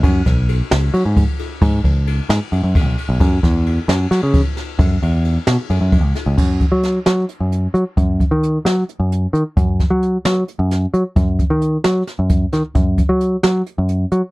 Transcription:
0.03 picked electric bass F#2, kick, ride
0.26 picked electric bass B1, kick, snare, ride
0.49 ride
0.71 picked electric bass C#2, snare, ride
0.94 picked electric bass F#3, ride
1.05 picked electric bass G#2
1.17 kick, ride
1.39 ride
1.62 picked electric bass G#2, kick, ride
1.84 picked electric bass C#2, kick, ride
2.07 ride
2.29 picked electric bass G#2, snare, ride
2.52 picked electric bass F#2, ride
2.63 picked electric bass F#2
2.75 kick, ride
2.86 picked electric bass B1
2.98 ride
3.09 picked electric bass B1
3.20 picked electric bass F#2, kick, ride
3.43 picked electric bass E2, kick, snare, ride
3.66 ride
3.88 picked electric bass F#2, snare, ride
4.11 picked electric bass F#3, snare, ride
4.23 picked electric bass C#3
4.34 kick, ride
4.57 snare, ride
4.79 picked electric bass F#2, kick, ride
5.02 picked electric bass E2, ride
5.25 ride
5.47 picked electric bass B2, snare, ride
5.70 picked electric bass F#2, ride
5.81 picked electric bass F#2
5.92 kick, ride
6.04 picked electric bass C#2
6.15 snare, ride
6.26 picked electric bass C#2
6.37 picked electric bass F#2, kick, crash
6.61 kick, closed hi-hat
6.72 picked electric bass F#3
6.83 snare, closed hi-hat
7.06 picked electric bass F#3, snare, closed hi-hat
7.29 closed hi-hat
7.40 picked electric bass F#2
7.52 closed hi-hat
7.74 picked electric bass F#3, closed hi-hat
7.97 picked electric bass F#2, kick, closed hi-hat
8.20 kick, closed hi-hat
8.31 picked electric bass D#3
8.43 closed hi-hat
8.65 picked electric bass F#3, snare, closed hi-hat
8.89 closed hi-hat
9.00 picked electric bass F#2
9.12 closed hi-hat
9.33 picked electric bass D#3, closed hi-hat
9.57 picked electric bass F#2, kick, closed hi-hat
9.80 kick, snare, closed hi-hat
9.90 picked electric bass F#3
10.02 closed hi-hat
10.25 picked electric bass F#3, snare, closed hi-hat
10.48 closed hi-hat
10.59 picked electric bass F#2
10.71 snare, closed hi-hat
10.94 picked electric bass F#3, closed hi-hat
11.16 picked electric bass F#2, kick, closed hi-hat
11.39 kick, closed hi-hat
11.50 picked electric bass D#3
11.62 closed hi-hat
11.84 picked electric bass F#3, snare, closed hi-hat
12.07 snare, closed hi-hat
12.19 picked electric bass F#2
12.30 kick, closed hi-hat
12.53 picked electric bass D#3, snare, closed hi-hat
12.75 picked electric bass F#2, kick, closed hi-hat
12.98 kick, closed hi-hat
13.09 picked electric bass F#3
13.21 closed hi-hat
13.43 picked electric bass F#3, snare, closed hi-hat
13.66 closed hi-hat
13.78 picked electric bass F#2
13.89 closed hi-hat
14.12 picked electric bass F#3, closed hi-hat

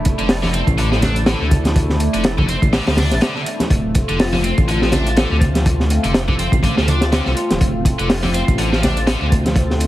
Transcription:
Already playing: detuned saw bass D1, analog synth pad A3 D4 E4
0.05 kick, closed hi-hat
0.19 detuned saw bass F1, distorted electric guitar D3, closed hi-hat
0.29 snare, closed hi-hat, open hi-hat
0.43 distorted electric guitar D3, snare, high conga
0.54 distorted electric guitar C4, closed hi-hat
0.67 detuned saw bass A1, kick, closed hi-hat
0.78 distorted electric guitar D3, closed hi-hat
0.92 distorted electric guitar F3, snare
1.02 distorted electric guitar D4, snare, closed hi-hat, high conga, low conga
1.16 closed hi-hat
1.26 distorted electric guitar D3, snare, closed hi-hat
1.41 detuned saw bass D2, distorted electric guitar D3
1.51 kick, closed hi-hat, low conga
1.65 snare, closed hi-hat, high conga
1.76 kick, closed hi-hat
1.90 snare
2.00 closed hi-hat
2.14 detuned saw bass F1, distorted electric guitar D3, closed hi-hat
2.24 snare, closed hi-hat
2.38 distorted electric guitar D3, kick, high conga, low conga
2.49 distorted electric guitar C4, closed hi-hat
2.62 detuned saw bass A1, kick, closed hi-hat, low conga
2.73 distorted electric guitar D3, snare, closed hi-hat, open hi-hat
2.87 detuned saw bass D2, distorted electric guitar F3, snare, open hi-hat
2.97 distorted electric guitar D4, snare, closed hi-hat, open hi-hat, high conga, low conga
3.11 detuned saw bass A1, snare, closed hi-hat
3.21 distorted electric guitar D3, snare, closed hi-hat
3.35 distorted electric guitar D3, snare
3.46 closed hi-hat
3.60 snare, closed hi-hat, high conga
3.70 detuned saw bass D1, analog synth pad C4 F4, kick, closed hi-hat
3.95 kick, closed hi-hat
4.09 detuned saw bass F1, distorted electric guitar D3, closed hi-hat
4.19 snare, closed hi-hat, open hi-hat
4.33 distorted electric guitar D3, snare, high conga
4.44 distorted electric guitar C4, closed hi-hat
4.58 detuned saw bass A1, kick, closed hi-hat
4.68 distorted electric guitar D3, closed hi-hat
4.82 distorted electric guitar F3, snare
4.92 distorted electric guitar D4, snare, closed hi-hat, high conga, low conga
5.07 closed hi-hat
5.17 distorted electric guitar D3, snare, closed hi-hat
5.31 detuned saw bass D2, distorted electric guitar D3
5.41 kick, closed hi-hat, low conga
5.55 snare, closed hi-hat, high conga
5.66 kick, closed hi-hat
5.80 snare
5.90 closed hi-hat
6.04 detuned saw bass F1, distorted electric guitar D3, closed hi-hat
6.14 snare, closed hi-hat
6.28 distorted electric guitar D3, kick, high conga, low conga
6.39 distorted electric guitar C4, closed hi-hat
6.52 detuned saw bass A1, kick, closed hi-hat, low conga
6.63 distorted electric guitar D3, kick, closed hi-hat
6.77 detuned saw bass D2, distorted electric guitar F3, snare
6.88 distorted electric guitar D4, closed hi-hat, high conga, low conga
7.01 snare, closed hi-hat
7.12 distorted electric guitar D3, snare, closed hi-hat
7.26 detuned saw bass C2, distorted electric guitar D3, snare
7.37 closed hi-hat
7.51 detuned saw bass D1, snare, closed hi-hat, high conga
7.61 detuned saw bass D1, kick, closed hi-hat
7.85 kick, closed hi-hat
7.99 detuned saw bass F1, distorted electric guitar D3, closed hi-hat
8.10 snare, closed hi-hat, open hi-hat
8.23 distorted electric guitar D3, snare, high conga
8.34 distorted electric guitar C4, closed hi-hat
8.48 detuned saw bass A1, kick, closed hi-hat
8.58 distorted electric guitar D3, closed hi-hat
8.73 distorted electric guitar F3, snare
8.83 distorted electric guitar D4, snare, closed hi-hat, high conga, low conga
8.97 closed hi-hat
9.07 distorted electric guitar D3, snare, closed hi-hat
9.21 detuned saw bass D2, distorted electric guitar D3
9.32 kick, closed hi-hat, low conga
9.46 snare, closed hi-hat, high conga
9.56 kick, closed hi-hat
9.70 snare
9.80 closed hi-hat

